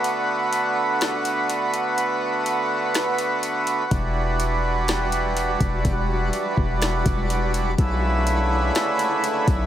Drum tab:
HH |x-x-xxxx|x-x-xxxx|x-x-xxxx|x-x-xxxx|
SD |----o---|----o---|----o---|----o---|
BD |--------|--------|o------o|o--o-o--|

HH |x-x-xxxx|
SD |----o---|
BD |o------o|